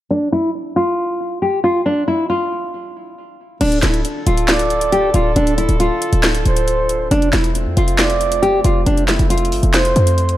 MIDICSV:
0, 0, Header, 1, 6, 480
1, 0, Start_track
1, 0, Key_signature, -1, "minor"
1, 0, Tempo, 437956
1, 115, Time_signature, 4, 2, 24, 8
1, 11369, End_track
2, 0, Start_track
2, 0, Title_t, "Soft synth lead"
2, 0, Program_c, 0, 80
2, 4912, Note_on_c, 0, 74, 97
2, 5830, Note_off_c, 0, 74, 0
2, 7078, Note_on_c, 0, 72, 84
2, 7754, Note_off_c, 0, 72, 0
2, 8755, Note_on_c, 0, 74, 83
2, 9671, Note_off_c, 0, 74, 0
2, 10674, Note_on_c, 0, 72, 106
2, 11352, Note_off_c, 0, 72, 0
2, 11369, End_track
3, 0, Start_track
3, 0, Title_t, "Nylon-string guitar"
3, 0, Program_c, 1, 24
3, 115, Note_on_c, 1, 62, 104
3, 298, Note_off_c, 1, 62, 0
3, 356, Note_on_c, 1, 64, 86
3, 538, Note_off_c, 1, 64, 0
3, 834, Note_on_c, 1, 65, 80
3, 1512, Note_off_c, 1, 65, 0
3, 1556, Note_on_c, 1, 67, 80
3, 1739, Note_off_c, 1, 67, 0
3, 1795, Note_on_c, 1, 65, 83
3, 1978, Note_off_c, 1, 65, 0
3, 2036, Note_on_c, 1, 62, 102
3, 2218, Note_off_c, 1, 62, 0
3, 2276, Note_on_c, 1, 64, 74
3, 2459, Note_off_c, 1, 64, 0
3, 2516, Note_on_c, 1, 65, 73
3, 3912, Note_off_c, 1, 65, 0
3, 3954, Note_on_c, 1, 62, 121
3, 4137, Note_off_c, 1, 62, 0
3, 4193, Note_on_c, 1, 64, 88
3, 4376, Note_off_c, 1, 64, 0
3, 4674, Note_on_c, 1, 65, 91
3, 5352, Note_off_c, 1, 65, 0
3, 5396, Note_on_c, 1, 67, 85
3, 5578, Note_off_c, 1, 67, 0
3, 5636, Note_on_c, 1, 65, 80
3, 5819, Note_off_c, 1, 65, 0
3, 5877, Note_on_c, 1, 62, 101
3, 6059, Note_off_c, 1, 62, 0
3, 6114, Note_on_c, 1, 64, 68
3, 6298, Note_off_c, 1, 64, 0
3, 6356, Note_on_c, 1, 65, 78
3, 7752, Note_off_c, 1, 65, 0
3, 7796, Note_on_c, 1, 62, 108
3, 7978, Note_off_c, 1, 62, 0
3, 8038, Note_on_c, 1, 64, 88
3, 8220, Note_off_c, 1, 64, 0
3, 8515, Note_on_c, 1, 65, 93
3, 9192, Note_off_c, 1, 65, 0
3, 9234, Note_on_c, 1, 67, 93
3, 9417, Note_off_c, 1, 67, 0
3, 9475, Note_on_c, 1, 65, 81
3, 9658, Note_off_c, 1, 65, 0
3, 9715, Note_on_c, 1, 62, 97
3, 9898, Note_off_c, 1, 62, 0
3, 9954, Note_on_c, 1, 64, 75
3, 10137, Note_off_c, 1, 64, 0
3, 10194, Note_on_c, 1, 65, 80
3, 11369, Note_off_c, 1, 65, 0
3, 11369, End_track
4, 0, Start_track
4, 0, Title_t, "Brass ensemble"
4, 0, Program_c, 2, 61
4, 3954, Note_on_c, 2, 65, 71
4, 3954, Note_on_c, 2, 69, 85
4, 3955, Note_on_c, 2, 62, 71
4, 3956, Note_on_c, 2, 50, 78
4, 7757, Note_off_c, 2, 50, 0
4, 7757, Note_off_c, 2, 62, 0
4, 7757, Note_off_c, 2, 69, 0
4, 7795, Note_on_c, 2, 57, 80
4, 7795, Note_on_c, 2, 60, 70
4, 11369, Note_off_c, 2, 57, 0
4, 11369, Note_off_c, 2, 60, 0
4, 11369, Note_off_c, 2, 65, 0
4, 11369, End_track
5, 0, Start_track
5, 0, Title_t, "808-style bass"
5, 0, Program_c, 3, 38
5, 3956, Note_on_c, 3, 26, 114
5, 4186, Note_off_c, 3, 26, 0
5, 4196, Note_on_c, 3, 26, 108
5, 4426, Note_off_c, 3, 26, 0
5, 4675, Note_on_c, 3, 26, 101
5, 5597, Note_off_c, 3, 26, 0
5, 5635, Note_on_c, 3, 26, 100
5, 5866, Note_off_c, 3, 26, 0
5, 5875, Note_on_c, 3, 26, 112
5, 6221, Note_off_c, 3, 26, 0
5, 6234, Note_on_c, 3, 26, 101
5, 6465, Note_off_c, 3, 26, 0
5, 6714, Note_on_c, 3, 26, 110
5, 7061, Note_off_c, 3, 26, 0
5, 7076, Note_on_c, 3, 26, 104
5, 7767, Note_off_c, 3, 26, 0
5, 7794, Note_on_c, 3, 29, 118
5, 8025, Note_off_c, 3, 29, 0
5, 8035, Note_on_c, 3, 28, 115
5, 8396, Note_on_c, 3, 41, 102
5, 8412, Note_off_c, 3, 28, 0
5, 8510, Note_off_c, 3, 41, 0
5, 8515, Note_on_c, 3, 29, 104
5, 9437, Note_off_c, 3, 29, 0
5, 9475, Note_on_c, 3, 29, 104
5, 9706, Note_off_c, 3, 29, 0
5, 9716, Note_on_c, 3, 29, 114
5, 10061, Note_off_c, 3, 29, 0
5, 10076, Note_on_c, 3, 29, 110
5, 10435, Note_on_c, 3, 31, 99
5, 10452, Note_off_c, 3, 29, 0
5, 10549, Note_off_c, 3, 31, 0
5, 10555, Note_on_c, 3, 29, 109
5, 10901, Note_off_c, 3, 29, 0
5, 10916, Note_on_c, 3, 41, 107
5, 11369, Note_off_c, 3, 41, 0
5, 11369, End_track
6, 0, Start_track
6, 0, Title_t, "Drums"
6, 3955, Note_on_c, 9, 42, 82
6, 3955, Note_on_c, 9, 49, 101
6, 4064, Note_off_c, 9, 42, 0
6, 4064, Note_off_c, 9, 49, 0
6, 4076, Note_on_c, 9, 42, 54
6, 4185, Note_off_c, 9, 42, 0
6, 4192, Note_on_c, 9, 39, 72
6, 4196, Note_on_c, 9, 38, 97
6, 4196, Note_on_c, 9, 42, 81
6, 4302, Note_off_c, 9, 39, 0
6, 4305, Note_off_c, 9, 38, 0
6, 4306, Note_off_c, 9, 42, 0
6, 4314, Note_on_c, 9, 42, 55
6, 4424, Note_off_c, 9, 42, 0
6, 4436, Note_on_c, 9, 42, 69
6, 4546, Note_off_c, 9, 42, 0
6, 4675, Note_on_c, 9, 42, 85
6, 4785, Note_off_c, 9, 42, 0
6, 4795, Note_on_c, 9, 42, 57
6, 4904, Note_off_c, 9, 42, 0
6, 4912, Note_on_c, 9, 39, 106
6, 4915, Note_on_c, 9, 38, 126
6, 4915, Note_on_c, 9, 42, 81
6, 5021, Note_off_c, 9, 39, 0
6, 5025, Note_off_c, 9, 38, 0
6, 5025, Note_off_c, 9, 42, 0
6, 5035, Note_on_c, 9, 42, 59
6, 5144, Note_off_c, 9, 42, 0
6, 5155, Note_on_c, 9, 42, 58
6, 5265, Note_off_c, 9, 42, 0
6, 5275, Note_on_c, 9, 42, 75
6, 5385, Note_off_c, 9, 42, 0
6, 5397, Note_on_c, 9, 42, 62
6, 5507, Note_off_c, 9, 42, 0
6, 5634, Note_on_c, 9, 42, 69
6, 5743, Note_off_c, 9, 42, 0
6, 5874, Note_on_c, 9, 42, 85
6, 5984, Note_off_c, 9, 42, 0
6, 5994, Note_on_c, 9, 42, 55
6, 6104, Note_off_c, 9, 42, 0
6, 6115, Note_on_c, 9, 42, 78
6, 6225, Note_off_c, 9, 42, 0
6, 6233, Note_on_c, 9, 42, 54
6, 6343, Note_off_c, 9, 42, 0
6, 6356, Note_on_c, 9, 42, 70
6, 6466, Note_off_c, 9, 42, 0
6, 6595, Note_on_c, 9, 42, 83
6, 6705, Note_off_c, 9, 42, 0
6, 6714, Note_on_c, 9, 42, 58
6, 6824, Note_off_c, 9, 42, 0
6, 6831, Note_on_c, 9, 39, 103
6, 6835, Note_on_c, 9, 38, 127
6, 6835, Note_on_c, 9, 42, 82
6, 6940, Note_off_c, 9, 39, 0
6, 6944, Note_off_c, 9, 38, 0
6, 6944, Note_off_c, 9, 42, 0
6, 6954, Note_on_c, 9, 42, 59
6, 7064, Note_off_c, 9, 42, 0
6, 7075, Note_on_c, 9, 42, 60
6, 7184, Note_off_c, 9, 42, 0
6, 7195, Note_on_c, 9, 42, 76
6, 7305, Note_off_c, 9, 42, 0
6, 7317, Note_on_c, 9, 42, 64
6, 7427, Note_off_c, 9, 42, 0
6, 7554, Note_on_c, 9, 42, 70
6, 7664, Note_off_c, 9, 42, 0
6, 7795, Note_on_c, 9, 42, 83
6, 7905, Note_off_c, 9, 42, 0
6, 7915, Note_on_c, 9, 42, 54
6, 8024, Note_off_c, 9, 42, 0
6, 8032, Note_on_c, 9, 39, 77
6, 8035, Note_on_c, 9, 38, 93
6, 8036, Note_on_c, 9, 42, 78
6, 8141, Note_off_c, 9, 39, 0
6, 8145, Note_off_c, 9, 38, 0
6, 8145, Note_off_c, 9, 42, 0
6, 8154, Note_on_c, 9, 42, 55
6, 8264, Note_off_c, 9, 42, 0
6, 8276, Note_on_c, 9, 42, 74
6, 8385, Note_off_c, 9, 42, 0
6, 8515, Note_on_c, 9, 42, 82
6, 8625, Note_off_c, 9, 42, 0
6, 8634, Note_on_c, 9, 42, 59
6, 8743, Note_off_c, 9, 42, 0
6, 8751, Note_on_c, 9, 39, 105
6, 8755, Note_on_c, 9, 38, 126
6, 8755, Note_on_c, 9, 42, 84
6, 8860, Note_off_c, 9, 39, 0
6, 8864, Note_off_c, 9, 38, 0
6, 8864, Note_off_c, 9, 42, 0
6, 8874, Note_on_c, 9, 42, 61
6, 8984, Note_off_c, 9, 42, 0
6, 8995, Note_on_c, 9, 42, 61
6, 9104, Note_off_c, 9, 42, 0
6, 9115, Note_on_c, 9, 42, 73
6, 9225, Note_off_c, 9, 42, 0
6, 9238, Note_on_c, 9, 42, 61
6, 9347, Note_off_c, 9, 42, 0
6, 9474, Note_on_c, 9, 42, 71
6, 9584, Note_off_c, 9, 42, 0
6, 9716, Note_on_c, 9, 42, 84
6, 9825, Note_off_c, 9, 42, 0
6, 9836, Note_on_c, 9, 42, 54
6, 9946, Note_off_c, 9, 42, 0
6, 9952, Note_on_c, 9, 39, 76
6, 9956, Note_on_c, 9, 38, 93
6, 9957, Note_on_c, 9, 42, 81
6, 10062, Note_off_c, 9, 39, 0
6, 10066, Note_off_c, 9, 38, 0
6, 10066, Note_off_c, 9, 42, 0
6, 10075, Note_on_c, 9, 42, 54
6, 10185, Note_off_c, 9, 42, 0
6, 10196, Note_on_c, 9, 42, 73
6, 10276, Note_off_c, 9, 42, 0
6, 10276, Note_on_c, 9, 42, 60
6, 10356, Note_off_c, 9, 42, 0
6, 10356, Note_on_c, 9, 42, 42
6, 10436, Note_on_c, 9, 46, 82
6, 10465, Note_off_c, 9, 42, 0
6, 10545, Note_off_c, 9, 46, 0
6, 10554, Note_on_c, 9, 42, 57
6, 10664, Note_off_c, 9, 42, 0
6, 10672, Note_on_c, 9, 39, 105
6, 10675, Note_on_c, 9, 38, 127
6, 10676, Note_on_c, 9, 42, 85
6, 10781, Note_off_c, 9, 39, 0
6, 10785, Note_off_c, 9, 38, 0
6, 10785, Note_off_c, 9, 42, 0
6, 10795, Note_on_c, 9, 42, 59
6, 10905, Note_off_c, 9, 42, 0
6, 10915, Note_on_c, 9, 42, 60
6, 11024, Note_off_c, 9, 42, 0
6, 11035, Note_on_c, 9, 42, 74
6, 11145, Note_off_c, 9, 42, 0
6, 11155, Note_on_c, 9, 42, 61
6, 11265, Note_off_c, 9, 42, 0
6, 11276, Note_on_c, 9, 42, 39
6, 11369, Note_off_c, 9, 42, 0
6, 11369, End_track
0, 0, End_of_file